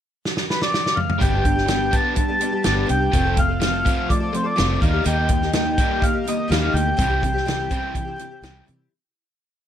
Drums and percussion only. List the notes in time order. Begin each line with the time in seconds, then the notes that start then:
0.25 snare
0.37 snare
0.50 snare
0.62 snare
0.74 snare
0.86 snare
0.97 mid tom
1.10 mid tom
1.21 kick, closed hi-hat
1.45 kick, closed hi-hat
1.57 snare
1.68 snare, closed hi-hat
1.93 kick, closed hi-hat
2.16 kick, closed hi-hat
2.41 closed hi-hat
2.64 snare, closed hi-hat
2.89 closed hi-hat
3.13 kick, closed hi-hat
3.37 kick, closed hi-hat
3.61 snare, closed hi-hat
3.86 kick, closed hi-hat
4.10 kick, closed hi-hat
4.34 closed hi-hat
4.58 snare, closed hi-hat
4.82 kick, closed hi-hat
5.05 closed hi-hat
5.29 kick, closed hi-hat
5.42 snare
5.53 snare, closed hi-hat
5.78 kick, closed hi-hat
6.02 kick, closed hi-hat
6.27 closed hi-hat
6.52 snare, closed hi-hat
6.76 closed hi-hat
6.99 kick, closed hi-hat
7.23 kick, closed hi-hat
7.37 snare
7.48 snare, closed hi-hat
7.71 kick, closed hi-hat
7.95 kick, closed hi-hat
8.19 closed hi-hat
8.43 snare, closed hi-hat
8.68 closed hi-hat